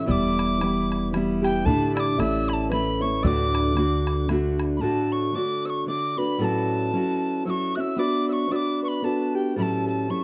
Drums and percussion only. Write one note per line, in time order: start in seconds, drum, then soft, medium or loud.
0.09 bodhran medium
0.39 bodhran medium
0.61 bodhran medium
0.92 bodhran medium
1.14 bodhran medium
1.44 bodhran medium
1.66 bodhran medium
1.97 bodhran medium
2.20 bodhran medium
2.50 bodhran medium
2.72 bodhran medium
3.24 bodhran medium
3.55 bodhran medium
3.77 bodhran medium
4.07 bodhran medium
4.29 bodhran medium
4.60 bodhran medium